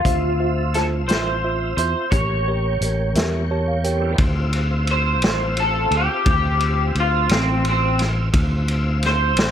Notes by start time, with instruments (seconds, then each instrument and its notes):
Already playing: clean electric guitar F4
0.05 fretless electric bass D2, tonewheel organ C4 F4 E5, tine electric piano F4 C5 E5, kick, closed hi-hat
0.40 tine electric piano F4 C5 E5
0.74 tine electric piano F4 C5 E5, clean electric guitar A4, snare, closed hi-hat
1.08 fretless electric bass A1, tine electric piano F4 C5 E5, clean electric guitar C5, snare, closed hi-hat
1.44 tine electric piano F4 C5 E5
1.77 fretless electric bass E2, tine electric piano F4 C5 E5, clean electric guitar C5, closed hi-hat
2.10 fretless electric bass A1, tonewheel organ A#3 G4 C#5, tine electric piano G4 A#4 C#5, clean electric guitar C#5, kick, closed hi-hat
2.48 tine electric piano G4 A#4 C#5
2.81 fretless electric bass A1, tine electric piano G4 A#4 C#5, closed hi-hat
3.14 fretless electric bass E2, tine electric piano G4 A#4 E5, snare, closed hi-hat
3.51 tine electric piano G4 A#4 C#5 A5
3.68 tine electric piano F5
3.84 tonewheel organ G3, tine electric piano G4 A#4 C#5 G5, closed hi-hat
3.91 tonewheel organ A3 B3
3.96 tonewheel organ C4 D4
4.02 tonewheel organ E4 F4
4.07 tonewheel organ G4 A4
4.13 tonewheel organ B4 C5
4.18 fretless electric bass D2, tonewheel organ C4 F4 E5, kick, ride
4.53 ride
4.87 ride
4.91 clean electric guitar C5
5.22 fretless electric bass A1, snare, ride
5.57 clean electric guitar A4, ride
5.91 fretless electric bass D2, ride
5.97 clean electric guitar G4
6.26 fretless electric bass D2, kick, ride
6.31 clean electric guitar G4
6.60 ride
6.95 fretless electric bass D2, ride
7.00 clean electric guitar F4
7.29 fretless electric bass A1, clean electric guitar C4, snare, ride
7.65 ride
7.69 clean electric guitar C4
7.99 snare, ride
8.32 fretless electric bass D2, tonewheel organ C4 F4 E5, kick, ride
8.68 ride
9.02 clean electric guitar C5, snare, ride
9.37 fretless electric bass A1, snare, ride